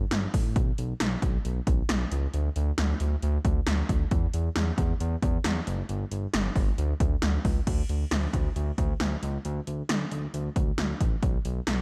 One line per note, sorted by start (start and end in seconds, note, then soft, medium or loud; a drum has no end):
0.11 0.27 G1 loud
0.11 snare loud
0.11 closed hi-hat medium
0.34 0.57 A1 medium
0.34 kick medium
0.34 open hi-hat medium
0.56 0.72 B1 loud
0.56 kick loud
0.56 closed hi-hat medium
0.78 0.94 B1 loud
0.78 closed hi-hat medium
1.00 1.16 B1 loud
1.00 snare loud
1.00 closed hi-hat medium
1.22 1.38 B1 loud
1.22 kick medium
1.22 closed hi-hat medium
1.45 1.60 B1 loud
1.45 closed hi-hat medium
1.67 1.83 B1 loud
1.67 kick medium
1.67 closed hi-hat medium
1.89 2.05 B1 medium
1.89 snare loud
1.89 closed hi-hat medium
2.11 2.27 C#2 loud
2.11 closed hi-hat medium
2.34 2.49 D2 loud
2.34 closed hi-hat medium
2.56 2.72 D2 loud
2.56 closed hi-hat medium
2.78 2.94 D2 loud
2.78 snare loud
2.78 closed hi-hat medium
3.00 3.16 D2 medium
3.00 closed hi-hat medium
3.23 3.38 D2 loud
3.23 closed hi-hat medium
3.45 3.60 D2 loud
3.45 kick medium
3.45 closed hi-hat medium
3.67 3.83 D2 loud
3.67 snare loud
3.67 closed hi-hat medium
3.89 4.05 D2 medium
3.89 kick medium
3.89 closed hi-hat medium
4.11 4.27 E2 loud
4.11 kick loud
4.11 closed hi-hat medium
4.34 4.49 E2 loud
4.34 closed hi-hat medium
4.56 4.72 E2 loud
4.56 snare loud
4.56 closed hi-hat medium
4.78 4.93 E2 loud
4.78 kick medium
4.78 closed hi-hat medium
5.00 5.16 E2 loud
5.00 closed hi-hat medium
5.22 5.38 E2 loud
5.22 kick medium
5.22 closed hi-hat medium
5.44 5.60 E2 medium
5.44 snare loud
5.44 closed hi-hat medium
5.67 5.83 F#1 loud
5.67 closed hi-hat medium
5.89 6.05 G1 loud
5.89 closed hi-hat medium
6.11 6.27 G1 loud
6.11 closed hi-hat medium
6.34 6.49 G1 loud
6.34 snare loud
6.34 closed hi-hat medium
6.56 6.71 G1 loud
6.56 kick medium
6.56 open hi-hat medium
6.78 6.94 D2 loud
6.78 closed hi-hat medium
7.00 7.16 D2 loud
7.00 kick medium
7.00 closed hi-hat medium
7.22 7.38 D2 loud
7.22 snare loud
7.22 closed hi-hat medium
7.45 7.60 C#2 loud
7.45 kick medium
7.45 open hi-hat medium
7.67 7.83 D2 loud
7.67 kick loud
7.67 closed hi-hat medium
7.67 crash medium
7.89 8.05 D2 medium
7.89 closed hi-hat medium
8.11 8.27 D2 loud
8.11 snare loud
8.11 closed hi-hat medium
8.33 8.49 D2 medium
8.33 kick medium
8.33 closed hi-hat medium
8.56 8.71 D2 loud
8.56 closed hi-hat medium
8.78 8.94 D2 loud
8.78 kick medium
8.78 closed hi-hat medium
9.00 9.16 D2 medium
9.00 snare loud
9.00 closed hi-hat medium
9.23 9.38 C#2 loud
9.23 closed hi-hat medium
9.45 9.60 D2 loud
9.45 closed hi-hat medium
9.67 9.83 D2 medium
9.67 closed hi-hat medium
9.89 10.05 D2 medium
9.89 snare loud
9.89 closed hi-hat medium
10.11 10.27 D2 medium
10.11 closed hi-hat medium
10.34 10.49 D2 loud
10.34 closed hi-hat medium
10.56 10.71 D2 loud
10.56 kick medium
10.56 closed hi-hat medium
10.78 10.94 D2 loud
10.78 snare loud
10.78 closed hi-hat medium
11.01 11.16 A1 medium
11.01 kick medium
11.01 closed hi-hat medium
11.23 11.38 B1 loud
11.23 kick loud
11.23 closed hi-hat medium
11.45 11.60 B1 loud
11.45 closed hi-hat medium
11.67 11.82 B1 loud
11.67 snare loud
11.67 closed hi-hat medium